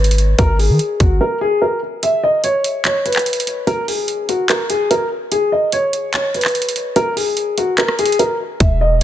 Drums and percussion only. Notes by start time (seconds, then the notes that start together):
0.04 closed hi-hat
0.11 closed hi-hat
0.18 closed hi-hat
0.39 kick, closed hi-hat
0.60 open hi-hat
0.79 closed hi-hat
1.00 kick, closed hi-hat
2.03 closed hi-hat
2.44 closed hi-hat
2.64 closed hi-hat
2.85 clap, closed hi-hat
3.06 closed hi-hat
3.13 clap, closed hi-hat
3.19 closed hi-hat
3.26 closed hi-hat
3.33 closed hi-hat
3.40 closed hi-hat
3.47 closed hi-hat
3.67 closed hi-hat
3.88 open hi-hat
4.08 closed hi-hat
4.29 closed hi-hat
4.49 clap, closed hi-hat
4.70 closed hi-hat
4.91 closed hi-hat
5.32 closed hi-hat
5.72 closed hi-hat
5.93 closed hi-hat
6.13 clap, closed hi-hat
6.34 closed hi-hat
6.41 clap, closed hi-hat
6.48 closed hi-hat
6.55 closed hi-hat
6.62 closed hi-hat
6.69 closed hi-hat
6.76 closed hi-hat
6.96 closed hi-hat
7.17 open hi-hat
7.37 closed hi-hat
7.58 closed hi-hat
7.78 clap, closed hi-hat
7.88 cross-stick
7.99 closed hi-hat
8.06 closed hi-hat
8.12 closed hi-hat
8.19 closed hi-hat
8.60 kick, closed hi-hat